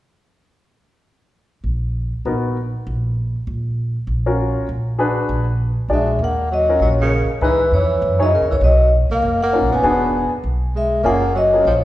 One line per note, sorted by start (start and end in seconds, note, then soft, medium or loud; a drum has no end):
1.64 2.12 A#1 medium
2.25 2.73 A#1 medium
2.25 2.56 B3 soft
2.25 2.56 D#4 soft
2.25 2.56 F#4 soft
2.25 2.57 A#4 medium
2.87 3.34 A#1 medium
3.47 3.95 A#1 medium
4.07 4.55 A#1 medium
4.26 4.66 C#4 medium
4.26 4.66 F4 soft
4.26 4.66 F#4 medium
4.26 4.66 A#4 medium
4.69 5.16 A#1 medium
4.98 5.44 D4 medium
4.98 5.44 F#4 soft
4.98 5.44 G#4 medium
4.98 5.44 B4 medium
5.29 5.76 A#1 medium
5.88 6.17 A#1 medium
5.88 6.19 G#3 medium
5.88 6.06 D4 soft
5.88 6.06 F#4 soft
5.88 6.06 G#4 soft
5.88 6.06 D5 medium
5.94 6.20 E5 medium
6.19 6.77 D#2 medium
6.19 6.49 A#3 medium
6.24 6.53 F#5 medium
6.51 6.79 F#3 medium
6.51 6.83 D#5 medium
6.69 7.09 C#4 soft
6.69 7.09 F4 soft
6.69 7.09 F#4 soft
6.69 7.09 A#4 medium
6.80 7.25 A#1 medium
6.80 6.89 F#3 medium
6.80 6.91 C#5 medium
7.01 7.28 C#3 medium
7.01 7.29 A#4 medium
7.28 muted upright bass stroke soft
7.41 7.69 C#2 medium
7.41 7.71 E3 medium
7.41 7.58 D#4 medium
7.41 7.58 E4 medium
7.41 7.58 G#4 medium
7.41 7.58 B4 medium
7.41 7.74 B4 medium
7.72 8.00 F2 medium
7.72 8.18 E3 medium
7.72 8.18 C#5 medium
8.02 8.39 F#2 medium
8.19 8.32 F#3 medium
8.19 8.30 D#4 medium
8.19 8.31 E4 soft
8.19 8.30 G#4 soft
8.19 8.31 C#5 medium
8.19 8.34 D#5 medium
8.33 8.50 C#3 medium
8.33 8.52 A#4 medium
8.42 8.51 E2 soft
8.50 8.60 C#2 medium
8.50 8.56 E3 medium
8.50 8.57 C#5 medium
8.61 9.07 B1 medium
8.61 8.91 F#3 medium
8.61 8.91 D#5 medium
9.10 9.21 C2 medium
9.10 9.39 A#3 medium
9.10 9.43 F5 medium
9.22 9.60 F#1 medium
9.43 9.70 A#3 medium
9.43 9.70 F#5 medium
9.53 9.83 C#4 medium
9.53 9.84 D#4 soft
9.53 9.84 F4 soft
9.53 9.84 A#4 medium
9.61 9.72 A#1 medium
9.72 9.83 F1 medium
9.72 10.28 B3 medium
9.72 10.30 G#5 medium
9.83 10.29 E1 medium
9.83 10.28 B3 medium
9.83 10.28 D4 medium
9.83 10.29 F#4 medium
9.83 10.29 G#4 medium
10.32 muted upright bass stroke soft
10.44 11.02 B1 medium
10.75 11.03 G#3 medium
10.75 11.07 E5 medium
11.03 11.62 F#1 medium
11.03 11.32 A#3 medium
11.03 11.21 A#3 medium
11.03 11.21 C#4 medium
11.03 11.21 F4 medium
11.03 11.21 G#4 medium
11.03 11.34 F#5 medium
11.35 11.63 F#3 medium
11.35 11.65 D#5 medium
11.53 11.64 A#3 soft
11.53 11.65 C#4 soft
11.53 11.65 F4 soft
11.53 11.65 G#4 medium
11.65 11.84 A#1 medium
11.65 11.75 F3 medium
11.65 11.75 C#5 medium